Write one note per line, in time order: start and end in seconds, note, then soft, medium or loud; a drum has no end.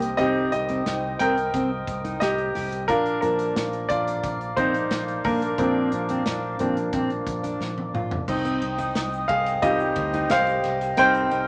0.00 0.12 C2 medium
0.00 0.18 G3 soft
0.00 0.19 C4 soft
0.00 0.19 D#4 medium
0.00 0.15 G4 medium
0.00 1.21 A#4 medium
0.00 2.84 C5 medium
0.00 0.16 D#5 medium
0.00 2.58 D#5 medium
0.00 1.19 G5 loud
0.00 2.84 G5 medium
0.00 2.65 D#6 medium
0.00 closed hi-hat medium
0.17 0.46 C2 loud
0.17 2.84 G3 soft
0.17 0.50 C4 medium
0.17 2.84 C4 soft
0.17 2.85 D#4 medium
0.17 0.50 G4 medium
0.17 0.49 D#5 loud
0.17 kick medium
0.17 closed hi-hat medium
0.52 0.80 C2 medium
0.52 1.16 G4 medium
0.52 1.21 D#5 medium
0.52 closed hi-hat medium
0.69 0.85 C4 medium
0.69 closed hi-hat soft
0.86 1.14 C2 medium
0.86 1.18 D#4 medium
0.86 snare medium
0.86 closed hi-hat medium
1.19 1.48 C2 loud
1.19 1.36 C4 medium
1.19 2.18 A#4 medium
1.19 2.24 G5 loud
1.19 closed hi-hat medium
1.38 closed hi-hat soft
1.54 1.81 C2 medium
1.54 1.70 C4 medium
1.54 kick medium
1.54 closed hi-hat medium
1.87 2.15 C2 medium
1.87 kick medium
1.87 closed hi-hat medium
2.04 2.20 D#4 medium
2.04 closed hi-hat soft
2.20 2.49 C2 medium
2.20 2.85 G4 medium
2.20 2.84 D#5 medium
2.20 snare loud
2.20 closed hi-hat medium
2.38 closed hi-hat soft
2.55 2.89 C2 medium
2.55 2.71 G4 medium
2.55 snare soft
2.55 open hi-hat medium
2.72 closed hi-hat medium
2.87 3.16 A#1 loud
2.87 3.20 D4 medium
2.87 3.21 F4 medium
2.87 8.02 A#4 medium
2.87 3.19 A#4 medium
2.87 8.24 D5 medium
2.87 8.03 F5 medium
2.87 8.24 D6 medium
2.87 kick medium
2.87 closed hi-hat medium
3.06 closed hi-hat soft
3.21 3.50 A#1 medium
3.21 5.57 F3 soft
3.21 5.57 A#3 soft
3.21 3.86 D4 medium
3.21 3.54 D4 medium
3.21 3.85 A#4 medium
3.21 closed hi-hat medium
3.39 closed hi-hat soft
3.56 3.84 A#1 loud
3.56 snare loud
3.56 closed hi-hat medium
3.73 closed hi-hat soft
3.89 4.17 A#1 loud
3.89 4.38 D4 medium
3.89 4.53 F4 medium
3.89 4.59 D5 medium
3.89 kick medium
3.89 closed hi-hat medium
4.08 closed hi-hat medium
4.24 4.51 A#1 loud
4.24 kick medium
4.24 closed hi-hat medium
4.41 closed hi-hat soft
4.57 4.85 A#1 medium
4.57 4.73 C4 medium
4.57 5.21 D#4 medium
4.57 5.20 C5 medium
4.57 kick medium
4.57 closed hi-hat medium
4.74 closed hi-hat medium
4.90 5.18 A#1 loud
4.90 snare loud
4.90 closed hi-hat medium
5.08 closed hi-hat soft
5.24 5.52 A#1 medium
5.24 5.41 A#3 medium
5.24 5.58 D4 medium
5.24 7.57 A#4 medium
5.24 kick medium
5.24 open hi-hat medium
5.42 closed hi-hat medium
5.58 5.86 A#1 loud
5.58 6.55 F3 medium
5.58 6.56 A#3 medium
5.58 5.91 C4 medium
5.58 6.56 D4 medium
5.58 kick medium
5.58 closed hi-hat medium
5.92 6.20 A#1 medium
5.92 closed hi-hat medium
6.09 6.25 C4 medium
6.09 closed hi-hat medium
6.26 6.54 A#1 loud
6.26 6.58 D4 medium
6.26 snare loud
6.26 closed hi-hat medium
6.59 6.87 A#1 medium
6.59 6.90 F3 soft
6.59 6.90 A#3 soft
6.59 6.76 C4 medium
6.59 6.91 D4 medium
6.59 closed hi-hat medium
6.77 closed hi-hat soft
6.93 7.21 A#1 loud
6.93 7.09 C4 medium
6.93 kick loud
6.93 closed hi-hat medium
7.10 closed hi-hat soft
7.27 7.54 A#1 medium
7.27 kick medium
7.27 closed hi-hat medium
7.43 7.60 D4 medium
7.43 closed hi-hat medium
7.60 7.88 A#1 medium
7.60 snare medium
7.78 high tom medium
7.94 8.22 A#1 medium
7.94 8.10 F4 medium
7.94 mid tom medium
8.11 floor tom medium
8.27 8.56 C2 loud
8.27 9.61 C4 soft
8.27 9.62 D#4 medium
8.27 11.47 C5 medium
8.27 11.47 D#5 medium
8.27 11.47 G5 medium
8.27 10.70 D#6 medium
8.27 kick medium
8.27 crash medium
8.27 shaker medium
8.44 8.61 C4 medium
8.44 ride soft
8.44 shaker soft
8.61 8.89 C2 medium
8.61 ride medium
8.78 9.26 D#4 medium
8.78 ride soft
8.78 shaker medium
8.95 9.23 C2 loud
8.95 snare loud
8.95 ride medium
8.95 shaker medium
9.12 shaker medium
9.28 9.57 C2 medium
9.28 9.61 G#4 medium
9.28 9.63 F5 medium
9.28 kick medium
9.28 ride medium
9.46 ride soft
9.46 shaker medium
9.62 9.90 C2 medium
9.62 9.93 G3 medium
9.62 9.93 C4 soft
9.62 9.93 D#4 medium
9.62 9.79 F4 medium
9.62 10.27 G4 medium
9.62 10.32 D#5 medium
9.62 kick loud
9.62 ride medium
9.62 shaker medium
9.79 shaker medium
9.96 10.24 D2 medium
9.96 kick medium
9.96 ride medium
10.13 10.30 D#4 medium
10.13 ride soft
10.13 shaker soft
10.29 10.58 C2 medium
10.29 10.78 G4 medium
10.29 10.95 C5 medium
10.29 11.00 F5 loud
10.29 snare loud
10.29 ride medium
10.29 shaker medium
10.47 ride soft
10.47 shaker soft
10.64 10.92 C2 medium
10.64 snare soft
10.64 ride soft
10.81 ride soft
10.81 shaker soft
10.97 11.25 C2 loud
10.97 11.43 G3 medium
10.97 11.30 C4 medium
10.97 11.43 C4 medium
10.97 11.43 D#4 medium
10.97 11.47 C5 medium
10.97 11.47 G5 loud
10.97 11.47 F6 medium
10.97 kick medium
10.97 ride medium
10.97 shaker medium
11.14 ride soft
11.14 shaker soft
11.31 11.47 C2 medium
11.31 ride soft